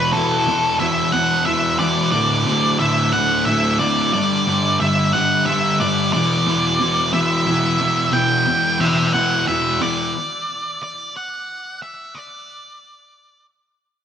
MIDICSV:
0, 0, Header, 1, 3, 480
1, 0, Start_track
1, 0, Tempo, 667408
1, 104, Time_signature, 6, 3, 24, 8
1, 10101, End_track
2, 0, Start_track
2, 0, Title_t, "Lead electric guitar"
2, 0, Program_c, 0, 29
2, 0, Note_on_c, 0, 71, 94
2, 81, Note_off_c, 0, 71, 0
2, 91, Note_on_c, 0, 69, 100
2, 548, Note_off_c, 0, 69, 0
2, 572, Note_on_c, 0, 76, 97
2, 800, Note_off_c, 0, 76, 0
2, 807, Note_on_c, 0, 78, 104
2, 1037, Note_off_c, 0, 78, 0
2, 1043, Note_on_c, 0, 76, 94
2, 1284, Note_off_c, 0, 76, 0
2, 1287, Note_on_c, 0, 74, 94
2, 1512, Note_off_c, 0, 74, 0
2, 1521, Note_on_c, 0, 74, 95
2, 2006, Note_off_c, 0, 74, 0
2, 2009, Note_on_c, 0, 76, 103
2, 2237, Note_off_c, 0, 76, 0
2, 2247, Note_on_c, 0, 78, 109
2, 2476, Note_off_c, 0, 78, 0
2, 2482, Note_on_c, 0, 76, 98
2, 2713, Note_off_c, 0, 76, 0
2, 2729, Note_on_c, 0, 74, 103
2, 2965, Note_off_c, 0, 74, 0
2, 2974, Note_on_c, 0, 74, 109
2, 3450, Note_off_c, 0, 74, 0
2, 3453, Note_on_c, 0, 76, 109
2, 3678, Note_off_c, 0, 76, 0
2, 3690, Note_on_c, 0, 78, 123
2, 3916, Note_off_c, 0, 78, 0
2, 3925, Note_on_c, 0, 76, 106
2, 4153, Note_off_c, 0, 76, 0
2, 4172, Note_on_c, 0, 74, 111
2, 4402, Note_off_c, 0, 74, 0
2, 4410, Note_on_c, 0, 74, 114
2, 5125, Note_off_c, 0, 74, 0
2, 5128, Note_on_c, 0, 76, 118
2, 5848, Note_on_c, 0, 79, 108
2, 5873, Note_off_c, 0, 76, 0
2, 6332, Note_on_c, 0, 76, 105
2, 6556, Note_off_c, 0, 76, 0
2, 6569, Note_on_c, 0, 78, 120
2, 6812, Note_off_c, 0, 78, 0
2, 6814, Note_on_c, 0, 76, 90
2, 7023, Note_off_c, 0, 79, 0
2, 7060, Note_on_c, 0, 74, 97
2, 7062, Note_off_c, 0, 76, 0
2, 7779, Note_off_c, 0, 74, 0
2, 7788, Note_on_c, 0, 74, 53
2, 8006, Note_off_c, 0, 74, 0
2, 8030, Note_on_c, 0, 78, 64
2, 8501, Note_off_c, 0, 78, 0
2, 8504, Note_on_c, 0, 76, 53
2, 8736, Note_on_c, 0, 74, 44
2, 8749, Note_off_c, 0, 76, 0
2, 9673, Note_off_c, 0, 74, 0
2, 10101, End_track
3, 0, Start_track
3, 0, Title_t, "Distorted electric guitar"
3, 0, Program_c, 1, 30
3, 0, Note_on_c, 1, 40, 85
3, 0, Note_on_c, 1, 47, 85
3, 0, Note_on_c, 1, 52, 100
3, 90, Note_off_c, 1, 40, 0
3, 97, Note_off_c, 1, 47, 0
3, 98, Note_on_c, 1, 40, 89
3, 100, Note_off_c, 1, 52, 0
3, 105, Note_on_c, 1, 47, 92
3, 109, Note_on_c, 1, 52, 109
3, 332, Note_off_c, 1, 40, 0
3, 337, Note_off_c, 1, 47, 0
3, 340, Note_on_c, 1, 40, 77
3, 342, Note_off_c, 1, 52, 0
3, 346, Note_on_c, 1, 47, 80
3, 351, Note_on_c, 1, 52, 83
3, 569, Note_off_c, 1, 40, 0
3, 573, Note_off_c, 1, 47, 0
3, 577, Note_off_c, 1, 52, 0
3, 578, Note_on_c, 1, 40, 93
3, 582, Note_on_c, 1, 47, 94
3, 585, Note_on_c, 1, 52, 94
3, 806, Note_off_c, 1, 40, 0
3, 810, Note_off_c, 1, 47, 0
3, 814, Note_on_c, 1, 40, 82
3, 815, Note_off_c, 1, 52, 0
3, 819, Note_on_c, 1, 47, 88
3, 823, Note_on_c, 1, 52, 97
3, 1044, Note_off_c, 1, 40, 0
3, 1049, Note_off_c, 1, 47, 0
3, 1053, Note_on_c, 1, 40, 78
3, 1055, Note_off_c, 1, 52, 0
3, 1058, Note_on_c, 1, 47, 80
3, 1063, Note_on_c, 1, 52, 85
3, 1283, Note_off_c, 1, 40, 0
3, 1291, Note_off_c, 1, 47, 0
3, 1292, Note_off_c, 1, 52, 0
3, 1292, Note_on_c, 1, 40, 85
3, 1299, Note_on_c, 1, 47, 87
3, 1301, Note_on_c, 1, 52, 88
3, 1522, Note_off_c, 1, 40, 0
3, 1526, Note_off_c, 1, 47, 0
3, 1527, Note_off_c, 1, 52, 0
3, 1532, Note_on_c, 1, 38, 96
3, 1537, Note_on_c, 1, 45, 102
3, 1541, Note_on_c, 1, 50, 99
3, 1769, Note_off_c, 1, 38, 0
3, 1774, Note_off_c, 1, 45, 0
3, 1777, Note_on_c, 1, 38, 88
3, 1778, Note_off_c, 1, 50, 0
3, 1783, Note_on_c, 1, 45, 87
3, 1787, Note_on_c, 1, 50, 88
3, 2005, Note_off_c, 1, 38, 0
3, 2010, Note_off_c, 1, 45, 0
3, 2014, Note_off_c, 1, 50, 0
3, 2014, Note_on_c, 1, 38, 86
3, 2018, Note_on_c, 1, 45, 89
3, 2022, Note_on_c, 1, 50, 102
3, 2246, Note_off_c, 1, 38, 0
3, 2251, Note_off_c, 1, 45, 0
3, 2253, Note_off_c, 1, 50, 0
3, 2254, Note_on_c, 1, 38, 96
3, 2260, Note_on_c, 1, 45, 89
3, 2262, Note_on_c, 1, 50, 96
3, 2487, Note_off_c, 1, 38, 0
3, 2492, Note_off_c, 1, 45, 0
3, 2494, Note_off_c, 1, 50, 0
3, 2495, Note_on_c, 1, 38, 79
3, 2501, Note_on_c, 1, 45, 90
3, 2503, Note_on_c, 1, 50, 87
3, 2726, Note_off_c, 1, 38, 0
3, 2731, Note_off_c, 1, 45, 0
3, 2734, Note_off_c, 1, 50, 0
3, 2735, Note_on_c, 1, 38, 85
3, 2740, Note_on_c, 1, 45, 82
3, 2742, Note_on_c, 1, 50, 95
3, 2962, Note_off_c, 1, 38, 0
3, 2965, Note_off_c, 1, 45, 0
3, 2966, Note_off_c, 1, 50, 0
3, 2978, Note_on_c, 1, 43, 104
3, 2981, Note_on_c, 1, 50, 95
3, 2986, Note_on_c, 1, 55, 97
3, 3209, Note_off_c, 1, 43, 0
3, 3213, Note_off_c, 1, 50, 0
3, 3217, Note_on_c, 1, 43, 75
3, 3222, Note_on_c, 1, 50, 84
3, 3223, Note_off_c, 1, 55, 0
3, 3226, Note_on_c, 1, 55, 101
3, 3446, Note_off_c, 1, 43, 0
3, 3453, Note_off_c, 1, 50, 0
3, 3454, Note_on_c, 1, 43, 83
3, 3462, Note_off_c, 1, 55, 0
3, 3462, Note_on_c, 1, 50, 98
3, 3464, Note_on_c, 1, 55, 100
3, 3691, Note_off_c, 1, 43, 0
3, 3695, Note_off_c, 1, 50, 0
3, 3700, Note_on_c, 1, 43, 92
3, 3704, Note_on_c, 1, 50, 103
3, 3707, Note_off_c, 1, 55, 0
3, 3710, Note_on_c, 1, 55, 93
3, 3928, Note_off_c, 1, 43, 0
3, 3934, Note_off_c, 1, 50, 0
3, 3936, Note_on_c, 1, 43, 79
3, 3942, Note_on_c, 1, 50, 100
3, 3943, Note_off_c, 1, 55, 0
3, 3946, Note_on_c, 1, 55, 96
3, 4168, Note_off_c, 1, 43, 0
3, 4171, Note_off_c, 1, 50, 0
3, 4176, Note_on_c, 1, 43, 87
3, 4179, Note_on_c, 1, 50, 102
3, 4180, Note_off_c, 1, 55, 0
3, 4183, Note_on_c, 1, 55, 90
3, 4402, Note_off_c, 1, 43, 0
3, 4403, Note_off_c, 1, 50, 0
3, 4414, Note_on_c, 1, 40, 97
3, 4418, Note_on_c, 1, 47, 113
3, 4419, Note_off_c, 1, 55, 0
3, 4422, Note_on_c, 1, 52, 106
3, 4645, Note_off_c, 1, 47, 0
3, 4646, Note_off_c, 1, 40, 0
3, 4649, Note_on_c, 1, 40, 92
3, 4653, Note_on_c, 1, 47, 93
3, 4657, Note_off_c, 1, 52, 0
3, 4660, Note_on_c, 1, 52, 98
3, 4889, Note_off_c, 1, 40, 0
3, 4889, Note_off_c, 1, 47, 0
3, 4892, Note_on_c, 1, 40, 98
3, 4895, Note_off_c, 1, 52, 0
3, 4897, Note_on_c, 1, 47, 99
3, 4898, Note_on_c, 1, 52, 107
3, 5123, Note_off_c, 1, 40, 0
3, 5128, Note_off_c, 1, 47, 0
3, 5131, Note_off_c, 1, 52, 0
3, 5131, Note_on_c, 1, 40, 83
3, 5136, Note_on_c, 1, 47, 90
3, 5140, Note_on_c, 1, 52, 101
3, 5361, Note_off_c, 1, 40, 0
3, 5368, Note_off_c, 1, 47, 0
3, 5370, Note_on_c, 1, 40, 90
3, 5373, Note_off_c, 1, 52, 0
3, 5377, Note_on_c, 1, 47, 84
3, 5381, Note_on_c, 1, 52, 95
3, 5602, Note_off_c, 1, 40, 0
3, 5607, Note_off_c, 1, 47, 0
3, 5611, Note_on_c, 1, 40, 89
3, 5614, Note_off_c, 1, 52, 0
3, 5616, Note_on_c, 1, 47, 100
3, 5623, Note_on_c, 1, 52, 97
3, 5841, Note_off_c, 1, 40, 0
3, 5845, Note_off_c, 1, 47, 0
3, 5849, Note_off_c, 1, 52, 0
3, 5850, Note_on_c, 1, 40, 94
3, 5854, Note_on_c, 1, 47, 95
3, 5857, Note_on_c, 1, 52, 107
3, 6083, Note_off_c, 1, 40, 0
3, 6089, Note_off_c, 1, 47, 0
3, 6092, Note_on_c, 1, 40, 82
3, 6093, Note_off_c, 1, 52, 0
3, 6097, Note_on_c, 1, 47, 92
3, 6101, Note_on_c, 1, 52, 95
3, 6318, Note_off_c, 1, 40, 0
3, 6322, Note_off_c, 1, 47, 0
3, 6326, Note_on_c, 1, 40, 98
3, 6328, Note_off_c, 1, 52, 0
3, 6331, Note_on_c, 1, 47, 92
3, 6336, Note_on_c, 1, 52, 101
3, 6563, Note_off_c, 1, 40, 0
3, 6567, Note_off_c, 1, 47, 0
3, 6569, Note_off_c, 1, 52, 0
3, 6572, Note_on_c, 1, 40, 85
3, 6576, Note_on_c, 1, 47, 87
3, 6578, Note_on_c, 1, 52, 100
3, 6803, Note_off_c, 1, 40, 0
3, 6810, Note_off_c, 1, 47, 0
3, 6812, Note_on_c, 1, 40, 76
3, 6814, Note_off_c, 1, 52, 0
3, 6818, Note_on_c, 1, 47, 79
3, 6823, Note_on_c, 1, 52, 90
3, 7047, Note_off_c, 1, 40, 0
3, 7053, Note_off_c, 1, 47, 0
3, 7056, Note_off_c, 1, 52, 0
3, 7056, Note_on_c, 1, 40, 89
3, 7062, Note_on_c, 1, 47, 83
3, 7065, Note_on_c, 1, 52, 89
3, 7281, Note_off_c, 1, 40, 0
3, 7284, Note_off_c, 1, 47, 0
3, 7286, Note_off_c, 1, 52, 0
3, 10101, End_track
0, 0, End_of_file